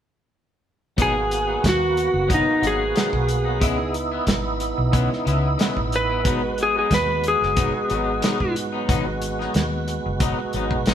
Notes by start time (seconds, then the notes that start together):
0.97 G#1 G#2 F#3 A#3 B3 D#4, kick, closed hi-hat
1.01 F#4 G#4
1.15 muted clean electric guitar stroke
1.31 muted clean electric guitar stroke, closed hi-hat
1.47 F#3 B3 D#4
1.63 D#2, muted clean electric guitar stroke, kick, snare, closed hi-hat
1.69 F#4
1.97 muted clean electric guitar stroke, closed hi-hat
2.14 F#1, muted clean electric guitar stroke
2.28 G#2 F#3 B3 D#4, kick, closed hi-hat
2.34 D#4
2.46 muted clean electric guitar stroke
2.61 G#1 G#2 F#3 B3 D#4, closed hi-hat
2.67 G#4
2.94 G#2 F#3 B3 D#4, snare, closed hi-hat
3.11 B1, muted clean electric guitar stroke, kick
3.27 muted clean electric guitar stroke, closed hi-hat
3.45 F#3 B3 D#4
3.60 C#2 C#3 G#3 B3 D#4 E4, kick, closed hi-hat
3.78 muted clean electric guitar stroke
3.94 muted clean electric guitar stroke, closed hi-hat
4.12 G#3 B3 E4
4.27 G#1, muted clean electric guitar stroke, kick, snare, closed hi-hat
4.60 muted clean electric guitar stroke, closed hi-hat
4.78 B1, muted clean electric guitar stroke
4.92 C#3 G#3 B3 E4, kick, closed hi-hat
5.10 muted clean electric guitar stroke, snare
5.25 C#2 C#3 G#3 B3 E4, closed hi-hat
5.58 C#3 G#3 B3 E4, snare, closed hi-hat
5.77 A1, muted clean electric guitar stroke, kick
5.92 B4, muted clean electric guitar stroke, closed hi-hat
6.09 G#3 B3 E4
6.23 G#1 G#2 F#3 G#3 B3 D#4 F#4, kick, closed hi-hat
6.43 muted clean electric guitar stroke
6.58 muted clean electric guitar stroke, closed hi-hat
6.63 G#4
6.76 F#3 B3 D#4 G#4
6.91 D#2 B4, muted clean electric guitar stroke, kick, snare, closed hi-hat
7.24 muted clean electric guitar stroke, closed hi-hat
7.28 G#4
7.41 F#1, muted clean electric guitar stroke, snare
7.56 G#2 F#3 B3 D#4, kick, closed hi-hat
7.74 muted clean electric guitar stroke
7.89 G#1 G#2 F#3 B3 D#4, closed hi-hat
8.21 G#2 F#3 B3 D#4, snare, closed hi-hat
8.40 G#2, muted clean electric guitar stroke, kick
8.55 muted clean electric guitar stroke, closed hi-hat
8.72 F#3 B3 D#4
8.88 G#1 G#2 F#3 B3 D#4, kick, closed hi-hat
9.06 muted clean electric guitar stroke
9.22 muted clean electric guitar stroke, closed hi-hat
9.39 F#3 B3 D#4, snare
9.54 D#2, muted clean electric guitar stroke, snare, closed hi-hat
9.88 muted clean electric guitar stroke, closed hi-hat
10.06 F#1, muted clean electric guitar stroke
10.20 G#2 F#3 B3 D#4, kick, closed hi-hat
10.39 muted clean electric guitar stroke
10.53 G#1 G#2 F#3 B3 D#4, closed hi-hat
10.71 kick
10.86 G#1 G#2 F#3 B3 D#4, snare, closed hi-hat